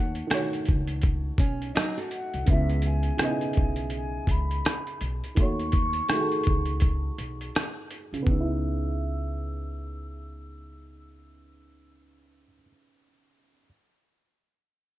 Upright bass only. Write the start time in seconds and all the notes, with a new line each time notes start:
Already playing: D#2
0.69 C#2
1.38 B1
2.34 C2
2.48 C#2
3.57 B1
4.28 C#2
5.01 B1
5.37 D#2
6.47 C#2
7.18 B1
8.13 C2
8.27 C#2